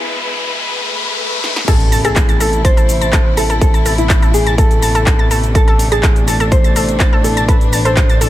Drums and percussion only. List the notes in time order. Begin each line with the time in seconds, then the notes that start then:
1.44 snare
1.56 snare
1.68 kick, closed hi-hat, crash, shaker
1.81 closed hi-hat
1.92 open hi-hat, shaker
2.05 closed hi-hat, shaker
2.16 kick, clap, closed hi-hat, shaker
2.29 closed hi-hat, shaker
2.40 open hi-hat, shaker
2.53 closed hi-hat, shaker
2.65 kick, closed hi-hat, shaker
2.77 closed hi-hat, shaker
2.89 open hi-hat, shaker
3.02 closed hi-hat, shaker
3.13 kick, clap, closed hi-hat, shaker
3.37 open hi-hat, shaker
3.50 closed hi-hat, shaker
3.61 kick, closed hi-hat, shaker
3.74 closed hi-hat, shaker
3.86 open hi-hat, shaker
3.98 closed hi-hat, shaker
4.10 kick, clap, closed hi-hat, shaker
4.22 closed hi-hat, shaker
4.34 open hi-hat, shaker
4.47 closed hi-hat, shaker
4.58 kick, closed hi-hat, shaker
4.71 closed hi-hat, shaker
4.83 open hi-hat, shaker
4.95 closed hi-hat, shaker
5.07 kick, clap, closed hi-hat, shaker
5.31 open hi-hat, shaker
5.44 closed hi-hat, shaker
5.55 kick, closed hi-hat, shaker
5.68 closed hi-hat
5.79 open hi-hat, shaker
5.92 closed hi-hat, shaker
6.03 kick, clap, closed hi-hat, shaker
6.16 closed hi-hat, shaker
6.28 open hi-hat, shaker
6.40 closed hi-hat, shaker
6.52 kick, closed hi-hat, shaker
6.64 closed hi-hat, shaker
6.76 open hi-hat, shaker
6.89 closed hi-hat, shaker
7.00 kick, clap, closed hi-hat, shaker
7.24 open hi-hat, shaker
7.37 closed hi-hat, shaker
7.49 kick, closed hi-hat, shaker
7.61 closed hi-hat, shaker
7.73 open hi-hat, shaker
7.85 closed hi-hat, shaker
7.97 kick, clap, closed hi-hat, shaker
8.10 closed hi-hat, shaker
8.21 open hi-hat, shaker